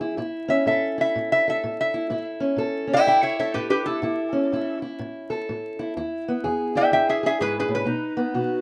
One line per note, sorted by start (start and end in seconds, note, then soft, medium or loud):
0.00 0.16 E2 medium
0.00 0.19 E3 medium
0.00 0.20 B3 soft
0.00 0.17 E4 medium
0.00 0.17 G#4 medium
0.17 0.63 A2 medium
0.17 0.97 E4 medium
0.48 2.40 C#4 medium
0.48 0.66 E5 medium
0.66 1.11 A2 medium
0.66 1.47 A4 medium
0.66 0.98 E5 medium
0.98 1.94 E4 medium
0.98 1.31 E5 medium
1.16 1.60 A2 medium
1.32 1.47 E5 medium
1.48 2.58 A4 medium
1.48 1.79 E5 medium
1.64 2.08 A2 medium
1.81 2.26 E5 loud
1.94 2.10 E4 medium
2.10 2.55 A2 medium
2.10 2.87 E4 medium
2.40 2.86 C#4 medium
2.56 3.02 A2 medium
2.56 3.37 A4 medium
2.87 2.97 C#4 medium
2.93 3.84 E4 soft
2.93 3.06 E5 medium
2.93 3.07 G5 medium
3.06 3.51 A2 medium
3.06 3.21 E5 medium
3.06 3.23 G5 medium
3.23 3.38 C#5 medium
3.23 3.38 E5 loud
3.39 4.02 A4 medium
3.39 3.54 C#5 medium
3.39 3.55 E5 medium
3.54 3.99 A2 medium
3.54 3.69 G4 medium
3.54 3.69 B4 medium
3.70 3.85 G4 medium
3.70 3.85 B4 medium
3.86 4.03 E4 medium
3.86 4.79 A4 medium
4.02 4.47 A2 medium
4.02 4.53 E4 medium
4.33 5.92 C#4 medium
4.52 4.96 A2 medium
4.52 4.82 E4 medium
4.82 5.77 E4 medium
4.99 5.43 A2 medium
5.30 5.93 A4 medium
5.49 5.92 A2 medium
5.79 5.94 E4 medium
5.97 6.40 E2 medium
5.97 6.74 E4 medium
6.28 7.86 B3 medium
6.44 6.88 E2 medium
6.44 7.21 G#4 medium
6.75 7.86 E4 medium
6.75 6.92 E5 medium
6.75 6.92 G5 medium
6.92 7.35 E2 medium
6.92 7.07 E5 medium
6.92 7.07 G5 medium
7.09 7.24 G#4 medium
7.09 7.24 E5 medium
7.23 7.85 G#4 medium
7.23 7.39 G#4 medium
7.23 7.40 E5 medium
7.40 7.68 G#2 medium
7.40 7.54 G#4 medium
7.40 7.56 B4 medium
7.59 7.72 G#4 medium
7.59 7.73 B4 medium
7.68 7.86 A2 medium
7.75 8.61 B4 medium
7.85 8.30 B2 medium
7.85 8.61 D#4 medium
8.17 8.61 B3 medium
8.34 8.61 B2 medium
8.34 8.61 F#4 medium